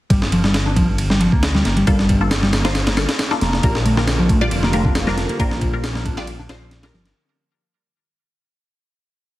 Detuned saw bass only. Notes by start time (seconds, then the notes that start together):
0.10 G1
1.33 D2
1.65 G1
1.87 G1
3.41 F1
3.64 A#1
4.51 F1
5.40 A#1
6.50 A#1
6.94 G1